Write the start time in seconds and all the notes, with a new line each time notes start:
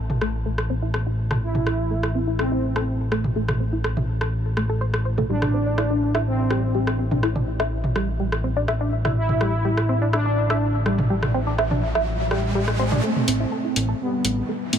Already playing: A1
0.10 mid tom
0.21 A3, cross-stick
0.46 A3
0.58 cross-stick
0.70 C4
0.82 E4
0.94 A4, cross-stick
1.07 E4
1.31 A4, cross-stick, mid tom
1.42 E4
1.55 mid tom
1.67 A3, cross-stick
1.91 A3
2.03 cross-stick
2.15 C4
2.27 E4
2.39 C4 A4, cross-stick
2.52 E4
2.76 A4, cross-stick
3.12 A3, cross-stick
3.24 mid tom
3.36 A3
3.48 cross-stick, mid tom
3.60 C4
3.73 E4
3.84 A4, cross-stick
3.97 E4, mid tom
4.21 A4, cross-stick
4.57 A3, cross-stick
4.69 A4
4.81 C5
4.94 cross-stick
5.05 C5
5.18 A3, mid tom
5.29 A1 G3 D4
5.42 cross-stick, mid tom
5.54 C4
5.66 D4
5.78 E4, cross-stick
5.90 D4
6.15 E4, cross-stick
6.26 C4
6.50 G3, cross-stick
6.75 G3
6.87 cross-stick
6.99 C4
7.11 D4, mid tom
7.23 E4, cross-stick
7.36 D4, mid tom
7.60 E4, cross-stick
7.84 mid tom
7.96 G3, cross-stick
8.20 G3
8.32 cross-stick
8.44 C4
8.57 D4
8.68 E4, cross-stick
8.81 D4
9.05 E4, cross-stick, mid tom
9.17 E4, riser
9.29 mid tom
9.41 G3, cross-stick
9.65 G3
9.77 cross-stick
9.89 C4
10.02 D4
10.13 D4 E4, cross-stick
10.26 D4
10.50 E4, cross-stick
10.86 G3, cross-stick
10.98 mid tom
11.10 G3
11.23 cross-stick, mid tom
11.34 C4
11.47 D4
11.58 E4, cross-stick
11.71 D4, mid tom
11.95 E4, cross-stick
12.31 G3, cross-stick
12.55 G3
12.68 cross-stick
12.79 C4
12.92 D4, mid tom
13.04 A3 C4, riser
13.16 mid tom
13.28 A1 C4, open hi-hat
13.40 E4
13.52 A4
13.65 E4
13.76 A1, open hi-hat
13.89 A4
14.00 G3 B3
14.25 A1 A3, open hi-hat
14.49 A3
14.73 A2 C4, open hi-hat